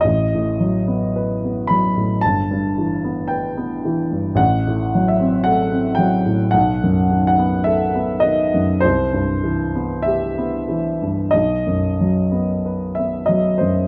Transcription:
<<
  \new Staff \with { instrumentName = "Upright piano" } { \time 4/4 \key b \phrygian \tempo 4 = 54 dis''4. b''8 a''4 g''4 | \tuplet 3/2 { fis''4 e''8 } fis''8 g''8 \tuplet 3/2 { fis''4 fis''8 } e''8 dis''8 | c''4 e''4 dis''4~ dis''16 e''16 dis''16 c''16 | }
  \new Staff \with { instrumentName = "Upright piano" } { \clef bass \time 4/4 \key b \phrygian a,,16 a,16 fis16 b16 b'16 b16 fis16 a,16 g,,16 g,16 e16 b16 b'16 b16 e16 g,16 | a,,16 a,16 fis16 c'16 a'16 c'16 fis16 a,16 b,,16 fis,16 dis16 b16 a'16 b16 dis16 fis,16 | c,16 g,16 e16 b16 g'16 b16 e16 g,16 b,,16 fis,16 fis16 b16 b'16 b16 fis16 fis,16 | }
>>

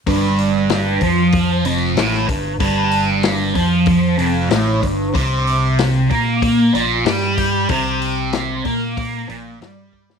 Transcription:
<<
  \new Staff \with { instrumentName = "Distorted electric guitar" } { \clef bass \time 4/4 \key f \mixolydian \tempo 4 = 94 g,4. f4 f,8 a,8 g,8 | g,4. f4 f,8 a,8 g,8 | c4. bes4 bes,8 g4 | c4. bes4 bes,8 g4 | }
  \new Staff \with { instrumentName = "Fingered electric bass" } { \clef bass \time 4/4 \key f \mixolydian g,,4. f,4 f,,8 a,,8 g,,8 | g,,4. f,4 f,,8 a,,8 g,,8 | c,4. bes,4 bes,,8 g,4 | c,4. bes,4 bes,,8 g,4 | }
  \new DrumStaff \with { instrumentName = "Drums" } \drummode { \time 4/4 <hho bd>8 hho8 <hho sn>8 <hho bd>8 <hho bd>8 hho8 <hho sn>16 sn16 <hho bd>8 | <hho bd>8 hho8 <hho sn>8 <hho bd>8 <hho bd>8 hho8 <hho sn>8 <hho bd>8 | <hho bd>8 hho8 <hho sn>8 <hho bd>8 <hho bd>8 hho8 <hho sn>16 sn16 <hho bd>8 | <hho bd>8 hho8 <hho sn>8 <hho bd>8 <hho bd>8 hho8 <hho sn>8 bd16 sn16 | }
>>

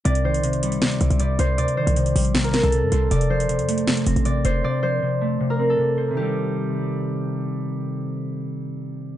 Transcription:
<<
  \new Staff \with { instrumentName = "Harp" } { \time 4/4 \key c \dorian \tempo 4 = 157 d''8 c''2~ c''8 d''8 c''8 | d''8 c''4.~ c''16 bes'8 a'4~ a'16 | d''8 c''2~ c''8 d''8 c''8 | d''8 c''4.~ c''16 bes'8 a'4~ a'16 |
g'2. r4 | r1 | }
  \new Staff \with { instrumentName = "Clean electric guitar" } { \clef bass \time 4/4 \key c \dorian c8 ees8 c8 g8 c8 c'8 c8 c''8 | c8 ees8 c8 g8 c8 c'8 c8 c''8 | c8 f8 c8 a8 c8 c'8 c8 c''8 | c8 f8 c8 a8 c8 c'8 c8 c''8 |
<c ees g c'>1~ | <c ees g c'>1 | }
  \new Staff \with { instrumentName = "808-style bass" } { \clef bass \time 4/4 \key c \dorian c,2 ees,16 c,16 c,16 c,8. c,8 | d,16 r8 c,8. bes,,4~ bes,,16 c,8 g,16 c,8 | f,,4~ f,,16 f,4~ f,16 f,,16 a,,8. f,,8 | r1 |
r1 | r1 | }
  \new DrumStaff \with { instrumentName = "Drums" } \drummode { \time 4/4 hh16 hh8 hh16 hh16 hh16 hh16 hh16 <hh sn>16 hh16 hh16 hh16 hh8 hh8 | hh16 hh8 hh16 hh16 hh16 hho16 hh16 <hh sn>16 hh16 <hh sn>16 hh16 hh8 hh8 | hh16 hh8 hh16 hh16 hh16 hh16 hh16 <hh sn>16 hh16 hh16 hh16 hh8 hh8 | r4 r4 r4 r4 |
r4 r4 r4 r4 | r4 r4 r4 r4 | }
>>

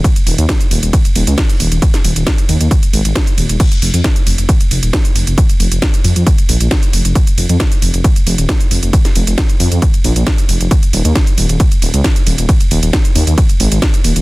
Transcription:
<<
  \new Staff \with { instrumentName = "Detuned saw bass" } { \clef bass \time 4/4 \key f \minor \tempo 4 = 135 r8 ees,,16 ees,16 r8 ees,,16 ees,,16 r8 ees,,16 des,16 r8 ees,,16 ees,,16 | r8 ees,,16 ees,,16 r8 ees,16 ees,16 r8 aes,,16 aes,,16 r8 ees,,16 ees,,16 | r8 f,,16 f,16 r8 f,,16 f,,16 r8 f,,16 ees,,16 r8 f,,16 f,,16 | r8 f,,16 f,,16 r8 f,16 f,16 r8 bes,,16 bes,,16 r8 f,,16 f,,16 |
r8 f,,16 f,16 r8 f,,16 f,,16 r8 f,,16 ees,,16 r8 f,,16 f,,16 | r8 f,,16 f,,16 r8 f,16 f,16 r8 bes,,16 bes,,16 r8 f,,16 f,,16 | r8 ees,,16 ees,16 r8 ees,,16 ees,,16 r8 ees,,16 des,16 r8 ees,,16 ees,,16 | r8 ees,,16 ees,,16 r8 ees,16 ees,16 r8 aes,,16 aes,,16 r8 ees,,16 ees,,16 | }
  \new DrumStaff \with { instrumentName = "Drums" } \drummode { \time 4/4 <hh bd cymr>16 <hh cymr>16 <hho cymr>16 <hh cymr>16 <hh bd cymr sn>16 <hh cymr>16 <hho cymr>16 <hh cymr>16 <hh bd cymr>16 <hh cymr>16 <hho cymr>16 <hh cymr>16 <hh bd cymr sn>16 <hh cymr>16 <hho cymr>16 <hh cymr>16 | <hh bd cymr>16 <hh cymr sn>16 <hho cymr>16 <hh cymr>16 <hh bd cymr sn>16 <hh cymr>16 <hho cymr>16 <hh cymr>16 <hh bd cymr>16 <hh cymr>16 <hho cymr>16 <hh cymr>16 <hh bd sn>16 <hh cymr>16 <hho cymr>16 <hh cymr>16 | <cymc hh bd cymr>16 <hh cymr>16 <hho cymr>16 <hh cymr>16 <hh bd cymr sn>16 <hh cymr>16 <hho cymr>16 <hh cymr>16 <hh bd cymr>16 <hh cymr>16 <hho cymr>16 <hh cymr>16 <hh bd cymr sn>16 <hh cymr>16 <hho cymr>16 <hh cymr>16 | <hh bd cymr>16 <hh cymr>16 <hho cymr>16 <hh cymr>16 <hh bd cymr sn>16 <hh cymr>16 <hho cymr>16 <hh cymr>16 <hh bd cymr>16 <hh cymr>16 <hho cymr>16 <hh cymr>16 <hh bd cymr sn>16 <hh cymr>16 <hho cymr>16 <hh cymr>16 |
<hh bd cymr>16 <hh cymr>16 <hho cymr>16 <hh cymr>16 <hh bd cymr sn>16 <hh cymr>16 <hho cymr>16 <hh cymr>16 <hh bd cymr>16 <hh cymr>16 <hho cymr>16 <hh cymr>16 <hh bd cymr sn>16 <hh cymr>16 <hho cymr>16 <hh cymr>16 | <hh bd cymr>16 <hh cymr sn>16 <hho cymr>16 <hh cymr>16 <hh bd cymr sn>16 <hh cymr>16 <hho cymr>16 <hh cymr>16 <hh bd cymr>16 <hh cymr>16 <hho cymr>16 <hh cymr>16 <hh bd cymr sn>16 <hh cymr>16 <hho cymr>16 <hh cymr>16 | <hh bd cymr>16 <hh cymr>16 <hho cymr>16 <hh cymr>16 <hh bd cymr sn>16 <hh cymr>16 <hho cymr>16 <hh cymr>16 <hh bd cymr>16 <hh cymr>16 <hho cymr>16 <hh cymr>16 <hh bd cymr sn>16 <hh cymr>16 <hho cymr>16 <hh cymr>16 | <hh bd cymr>16 <hh cymr>16 <hho cymr>16 <hh cymr>16 <hh bd cymr sn>16 <hh cymr>16 <hho cymr>16 <hh cymr>16 <hh bd cymr>16 <hh cymr>16 <hho cymr>16 <hh cymr>16 <hh bd cymr sn>16 <hh cymr>16 <hho cymr>16 <hh cymr>16 | }
>>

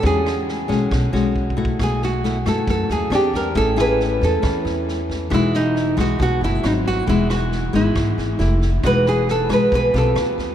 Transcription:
<<
  \new Staff \with { instrumentName = "Nylon-string guitar" } { \time 4/4 \key e \major \tempo 4 = 136 gis'2. r4 | gis'8 fis'4 a'8 a'8 gis'8 g'8 ais'8 | a'8 b'4 a'2 r8 | e'8 dis'4 fis'8 fis'8 e'8 dis'8 fis'8 |
e'8 fis'4 e'2 r8 | b'8 gis'8 a'8 b'8 b'8 a'8 r4 | }
  \new Staff \with { instrumentName = "Nylon-string guitar" } { \time 4/4 \key e \major << { <gis cis' fis'>4. <gis cis' fis'>4 <gis cis' fis'>4 <a e' fis'>8~ | <a e' fis'>4 <a e' fis'>8 <a e' fis'>4. <bis d' gis'>4 | <cis' e' gis'>8 <cis' e' gis'>4. <cis' e'>2 | <gis dis' fis'>4 r8 <gis dis' fis'>4. <fis bis e'>4 |
<gis b dis'>4. <gis b>4. <a e' g'>8 r8 | <gis dis' fis'>4. <gis dis' fis'>4 <c' f' g'>4. | } \\ { e2 b,2 | b,2 fis,4 r4 | a2 e2 | e2 b,4 r4 |
e2 e4 r4 | e2 b,4 r4 | } >> }
  \new Staff \with { instrumentName = "Upright bass" } { \clef bass \time 4/4 \key e \major e,4. b,,8 b,,8 b,,4. | b,,4. fis,8 fis,8 dis,8 e,4 | a,,4. e,8 e,8 e,4. | e,,4. b,,8 b,,8 fis,,8 gis,,4 |
e,,4. gis,,8 gis,,8 gis,,8 f,,4 | e,,4. b,,8 b,,8 b,,8 dis,4 | }
  \new DrumStaff \with { instrumentName = "Drums" } \drummode { \time 4/4 <bd sn>8 <ss sn>8 sn8 <bd sn>8 <bd ss sn>8 sn8 \tuplet 3/2 { bd8 bd8 bd8 } | <bd ss sn>8 sn8 sn8 <bd ss sn>8 <bd sn>8 sn8 <ss sn>8 <bd sn>8 | <bd sn>8 <ss sn>8 sn8 <bd sn>8 <bd ss sn>8 sn8 sn8 <bd sn>8 | <bd ss sn>8 sn8 sn8 <bd ss sn>8 <bd sn>8 sn8 <ss sn>8 <bd sn>8 |
<bd sn>8 <ss sn>8 sn8 <bd sn>8 <bd ss sn>8 sn8 sn8 <bd sn>8 | <bd ss sn>8 sn8 sn8 <bd ss sn>8 <bd sn>8 sn8 <ss sn>8 <bd sn>8 | }
>>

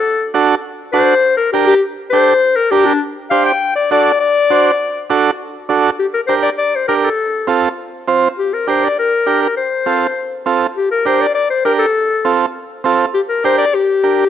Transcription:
<<
  \new Staff \with { instrumentName = "Clarinet" } { \time 4/4 \key d \phrygian \tempo 4 = 202 a'4 r2 c''4~ | c''8 bes'8 g'8 g'8 r4 c''4~ | c''8 bes'8 g'8 d'8 r4 f''8 g''8~ | g''8 d''8 d''4 d''2~ |
d''4 r2. | \key g \minor g'8 bes'8 c''8 d''8 d''8 c''8 bes'8 a'8~ | a'4. r2 r8 | g'8 bes'8 c''8 d''8 bes'4. bes'8 |
c''2. r4 | g'8 bes'8 c''8 d''8 d''8 c''8 bes'8 a'8~ | a'4. r2 r8 | g'8 bes'8 c''8 d''8 g'2 | }
  \new Staff \with { instrumentName = "Transistor combo organ" } { \time 4/4 \key d \phrygian r4 <d' fis' a'>8 r4. <d' fis' a'>8 r8 | r4 <d' g' bes'>8 r4. <d' g' a'>8 r8 | r4 <d' g' bes'>8 r4. <d' g' c''>8 r8 | r4 <d' fis' a'>8 r4. <d' fis' c''>8 r8 |
r4 <d' fis' a'>8 r4. <d' fis' a'>8 r8 | \key g \minor r4 <d' g' bes'>8 r4. <d' g' bes'>8 r8 | r4 <c' f' a'>8 r4. <c' f' c''>8 r8 | r4 <d' g' bes'>8 r4. <d' g' bes'>8 r8 |
r4 <c' f' a'>8 r4. <c' f' a'>8 r8 | r4 <d' g' bes'>8 r4. <d' g' bes'>8 r8 | r4 <c' f' a'>8 r4. <c' f' a'>8 r8 | r4 <d' g' bes'>8 r4. <d' g' bes'>8 r8 | }
>>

